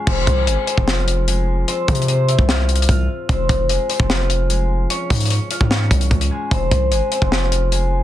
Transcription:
Already playing: harp G#3 C#4 F4 G#4 C#5 F5
0.07 808-style bass F1, harp C4 C5, kick, crash
0.27 808-style bass C2, kick, closed hi-hat
0.47 808-style bass G#1, harp G#3 G#4, closed hi-hat
0.67 harp C4 C5, closed hi-hat
0.78 808-style bass F1, kick
0.88 harp F3 F4, snare
1.08 closed hi-hat
1.28 harp G#3 G#4, closed hi-hat
1.68 harp C4 C5, closed hi-hat
1.88 808-style bass C3, kick, closed hi-hat
1.95 closed hi-hat
2.02 closed hi-hat
2.08 harp C4 C5, closed hi-hat
2.29 harp E4 E5, closed hi-hat
2.39 808-style bass C2, kick
2.48 harp F4 F5, snare
2.69 closed hi-hat
2.76 closed hi-hat
2.82 closed hi-hat
2.89 808-style bass C2, harp F4 F5, kick, closed hi-hat
3.29 808-style bass F1, harp C4 C5, kick, closed hi-hat
3.49 808-style bass F1, kick, closed hi-hat
3.69 harp G#3 G#4, closed hi-hat
3.90 harp C4 C5, closed hi-hat
4.00 808-style bass F1, kick
4.10 harp F3 F4, snare
4.30 closed hi-hat
4.50 harp G#3 G#4, closed hi-hat
4.90 harp C#4 C#5, closed hi-hat
5.10 808-style bass G#2, kick, closed hi-hat, open hi-hat
5.15 closed hi-hat
5.20 closed hi-hat
5.25 closed hi-hat
5.30 harp C#4 C#5, closed hi-hat
5.51 harp F4 F5, closed hi-hat
5.61 808-style bass G#2, kick
5.70 harp C#4 C#5, snare
5.91 808-style bass C2, kick, closed hi-hat
6.01 closed hi-hat
6.11 808-style bass C#2, kick, closed hi-hat
6.21 closed hi-hat
6.31 harp G#3 G#4
6.51 808-style bass F1, harp C4 C5, kick, closed hi-hat
6.71 808-style bass C2, kick, closed hi-hat
6.92 808-style bass G#1, harp G#3 G#4, closed hi-hat
7.11 harp C4 C5, closed hi-hat
7.22 808-style bass F1, kick
7.32 harp F3 F4, snare
7.52 closed hi-hat
7.72 harp G#3 G#4, closed hi-hat

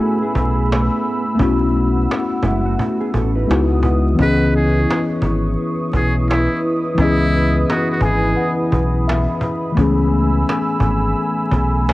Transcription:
Already playing: tine electric piano A3 B3 C#4 E4 G#4, analog synth pad A3 G#5 B5 E6
0.00 clean electric guitar A3 F#4, cajon slap
0.22 clean electric guitar B3 G#4, cajon slap
0.35 fingered electric bass B1, cajon bass
0.72 cajon slap
0.92 cajon slap
1.04 cajon slap
1.26 cajon slap
1.35 tine electric piano A3 B3
1.39 fingered electric bass B1, tine electric piano C#4 E4, analog synth pad F#5, cajon bass
1.44 tine electric piano F#4
1.61 cajon slap
1.74 cajon slap
1.96 cajon slap
2.11 cajon slap
2.31 cajon slap
2.43 fingered electric bass F#1, clean electric guitar G#3 E4, cajon bass
2.65 clean electric guitar A3 F#4, cajon slap
2.79 cajon bass
3.00 clean electric guitar B3 G#4, cajon slap
3.14 fingered electric bass A1, clean electric guitar C#4 A4, cajon bass
3.35 clean electric guitar D#4 B4
3.47 fingered electric bass C#2, tine electric piano G#3 B3 D#4 E4, analog synth pad B4 F#5 D#6, cajon slap
3.51 tine electric piano F#4, cajon slap
3.70 cajon slap
3.83 cajon bass
4.05 cajon slap
4.14 tine electric piano E3 B3, analog synth pad E4 B4 C#6 D#6
4.19 fingered electric bass C#2, tine electric piano C#4 D#5, muted trumpet B4, cajon bass
4.23 tine electric piano G#4
4.41 cajon slap
4.53 muted trumpet G#4, cajon slap
4.75 cajon slap
4.91 cajon slap
5.10 cajon slap
5.22 fingered electric bass G#1, cajon bass
5.46 cajon slap
5.58 cajon slap
5.80 cajon slap
5.93 fingered electric bass B1, muted trumpet G#4, cajon bass
6.30 muted trumpet E4, cajon slap
6.50 cajon slap
6.63 cajon slap
6.84 cajon slap
6.95 fingered electric bass C#2, tine electric piano E3 B3, analog synth pad B5, cajon bass
6.99 tine electric piano C#4 D#5, muted trumpet E4
7.04 tine electric piano G#4
7.20 cajon slap
7.54 cajon slap
7.70 muted trumpet F#4, cajon slap
7.89 muted trumpet F#4, cajon slap
8.01 fingered electric bass G#1, muted trumpet G#4, tine electric piano G#5, cajon bass
8.25 cajon slap
8.37 tine electric piano F#5, cajon slap
8.59 cajon slap
8.72 fingered electric bass B1, cajon bass
9.08 tine electric piano E5, cajon slap
9.28 cajon slap
9.41 cajon bass
9.63 cajon slap
9.72 tine electric piano E3 A3, analog synth pad E6
9.76 fingered electric bass C#2, analog synth pad A3 G#5, tine electric piano B3 C#4, cajon bass
9.81 tine electric piano G#4
9.99 cajon slap
10.11 cajon slap
10.34 cajon slap
10.49 cajon slap
10.68 cajon slap
10.80 fingered electric bass G#1, cajon bass
11.04 cajon slap
11.16 cajon slap
11.38 cajon slap
11.51 fingered electric bass B1, cajon bass
11.89 cajon slap

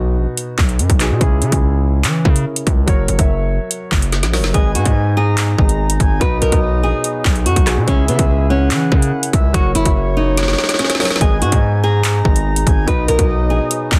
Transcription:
Already playing: 808-style bass B1, grand piano B2 B3 D#4 F#4
0.17 808-style bass A#1
0.37 closed hi-hat
0.58 808-style bass B1, kick, clap
0.69 closed hi-hat
0.79 808-style bass F#2, closed hi-hat
0.90 808-style bass B1, kick, closed hi-hat
0.99 grand piano B2 B3 D#4 G#4, clap, closed hi-hat
1.11 808-style bass B2
1.20 808-style bass C#2, grand piano C#3 C#4 E4 G#4, kick, closed hi-hat
1.42 808-style bass C#3, closed hi-hat
1.51 808-style bass C#2, grand piano C#3 C#4 E4 G#4, kick, closed hi-hat
2.04 808-style bass E3, clap, closed hi-hat
2.24 grand piano C#3 C#4 E4 A#4, 808-style bass C#3, kick
2.36 closed hi-hat
2.56 closed hi-hat
2.67 808-style bass C#2, kick, closed hi-hat
2.86 808-style bass F#1, grand piano F#3 F#4 A#4 C#5, kick, closed hi-hat
3.08 808-style bass F#1, closed hi-hat
3.18 808-style bass F#1, grand piano F#3 F#4 A#4 E5, kick, closed hi-hat
3.71 closed hi-hat
3.92 808-style bass F#1, kick, clap
4.02 closed hi-hat
4.12 snare, closed hi-hat
4.23 808-style bass A#1, snare, closed hi-hat
4.32 grand piano F#3 F#4 A#4 C#5, snare, open hi-hat
4.39 808-style bass F#1
4.44 snare
4.53 808-style bass G#1, grand piano G#3 G#4 B4 D#5, woodwind section G#3 B3 D#4, nylon-string guitar G#4, soft synth lead G#5, kick, closed hi-hat
4.75 808-style bass G#2, nylon-string guitar F#4, closed hi-hat
4.84 808-style bass G#2, grand piano G#3 G#4 B4 D#5, kick, closed hi-hat
5.17 nylon-string guitar G#4, soft synth lead A#5
5.38 clap, closed hi-hat
5.57 808-style bass G#1, grand piano G#3 G#4 B4 D#5, kick
5.69 closed hi-hat
5.90 closed hi-hat
6.00 808-style bass G#1, soft synth lead G#5, kick, closed hi-hat
6.20 808-style bass B1, grand piano B2 B3 D#4 F#4, woodwind section F#3, nylon-string guitar B4, soft synth lead D#5, kick, closed hi-hat
6.42 808-style bass B1, nylon-string guitar A#4, closed hi-hat
6.51 808-style bass B1, grand piano B2 B3 D#4 F#4, kick, closed hi-hat
6.83 808-style bass A#1, nylon-string guitar G#4
7.04 closed hi-hat
7.25 808-style bass B1, kick, clap
7.36 closed hi-hat
7.46 808-style bass F#2, nylon-string guitar F#4, closed hi-hat
7.56 808-style bass B1, kick, closed hi-hat
7.66 grand piano B2 B3 D#4 G#4, cross-stick, clap, closed hi-hat
7.77 808-style bass B2
7.86 808-style bass C#2, grand piano C#3 C#4 E4 G#4, woodwind section C#3 C#4 E4 G#4, nylon-string guitar C#4, soft synth lead E5, kick, closed hi-hat
8.08 808-style bass C#3, nylon-string guitar B3, closed hi-hat
8.18 808-style bass C#2, grand piano C#3 C#4 E4 G#4, kick, closed hi-hat
8.49 nylon-string guitar C#4, soft synth lead F#5
8.71 808-style bass E3, clap, closed hi-hat
8.91 grand piano C#3 C#4 E4 A#4, 808-style bass C#3, kick
9.02 closed hi-hat
9.23 closed hi-hat
9.33 808-style bass C#2, soft synth lead E5, kick, closed hi-hat
9.53 808-style bass F#1, grand piano F#3 F#4 A#4 C#5, woodwind section F#3 A#3, nylon-string guitar F#4, soft synth lead C#5, kick, closed hi-hat
9.75 808-style bass F#1, nylon-string guitar E4, closed hi-hat
9.84 808-style bass F#1, grand piano F#3 F#4 A#4 E5, kick, closed hi-hat
10.17 nylon-string guitar D#4
10.37 snare, closed hi-hat
10.43 snare
10.48 snare
10.53 snare
10.58 snare
10.64 snare
10.69 snare, closed hi-hat
10.74 snare
10.79 nylon-string guitar C#4, snare, closed hi-hat
10.84 snare
10.90 snare, closed hi-hat
10.95 grand piano F#3, snare
11.00 grand piano F#4 A#4 C#5, snare, open hi-hat
11.05 snare
11.10 snare
11.16 grand piano G#3, snare
11.21 808-style bass G#1, woodwind section G#3 B3 D#4, grand piano G#4 B4 D#5, nylon-string guitar G#4, soft synth lead G#5, kick, closed hi-hat
11.42 808-style bass G#2, nylon-string guitar F#4, closed hi-hat
11.51 808-style bass G#2, grand piano G#3 G#4 B4 D#5, kick, closed hi-hat
11.84 nylon-string guitar G#4, soft synth lead A#5
12.04 clap, closed hi-hat
12.24 808-style bass G#1, grand piano G#3 G#4 B4 D#5, kick
12.36 closed hi-hat
12.56 closed hi-hat
12.67 808-style bass G#1, soft synth lead G#5, kick, closed hi-hat
12.86 808-style bass B1, grand piano B2 B3 D#4 F#4, woodwind section F#3, nylon-string guitar B4, soft synth lead D#5, kick, closed hi-hat
13.08 808-style bass B1, nylon-string guitar A#4, closed hi-hat
13.18 808-style bass B1, grand piano B2 B3 D#4 F#4, kick, closed hi-hat
13.50 808-style bass A#1, nylon-string guitar G#4
13.71 closed hi-hat
13.92 808-style bass B1, kick, clap

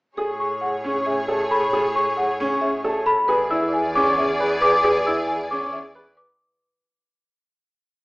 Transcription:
0.17 double bass A2, string section G#4 C#5, french horn G#4, grand piano G#4, marimba A4
0.39 french horn G#4, celesta C#6
0.61 french horn G#4, marimba F#5
0.83 grand piano C#4, french horn G#4
1.05 french horn G#4, marimba E5
1.27 french horn G#4, grand piano A4
1.50 french horn G#4, marimba A4, celesta B5
1.72 french horn G#4, grand piano G#4, marimba A4
1.94 french horn G#4, celesta C#6
2.17 french horn G#4, marimba F#5
2.39 grand piano C#4, french horn G#4
2.61 french horn G#4, marimba E5
2.84 french horn G#4, grand piano A4
3.06 marimba A4, celesta B5
3.28 double bass E2, french horn G#4, string section G#4 D5, grand piano G#4, marimba B4
3.51 grand piano E4, french horn G#4, celesta E6
3.73 french horn G#4, marimba G#5
3.94 grand piano C#4, french horn G#4, celesta D6
4.18 french horn G#4, marimba E5
4.40 french horn G#4, grand piano B4
4.61 french horn G#4, marimba B4, celesta D6
4.84 french horn G#4, grand piano G#4, marimba B4
5.06 grand piano E4, french horn G#4, celesta E6
5.28 french horn G#4, marimba G#5
5.50 grand piano C#4, french horn G#4, celesta D6
5.73 french horn G#4, marimba E5
5.95 french horn G#4, grand piano B4
6.17 marimba B4, celesta D6

